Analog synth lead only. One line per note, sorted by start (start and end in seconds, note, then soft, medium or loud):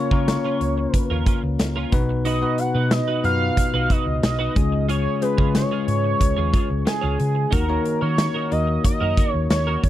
0.00 0.95 C#5 loud
0.95 1.89 B4 loud
2.26 2.61 D#5 loud
2.59 2.93 F#5 loud
2.91 3.24 D#5 loud
3.25 3.93 F5 loud
3.91 4.24 D#5 loud
4.25 4.86 D#5 medium
4.90 5.23 C#5 loud
5.22 5.55 B4 medium
5.55 6.83 C#5 loud
6.88 7.54 G#4 medium
7.53 8.02 A#4 medium
8.02 8.53 C#5 loud
8.52 8.84 D#5 medium
8.85 9.32 D#5 loud
9.32 9.47 C#5 loud
9.51 9.81 C#5 medium
9.84 9.89 C#5 loud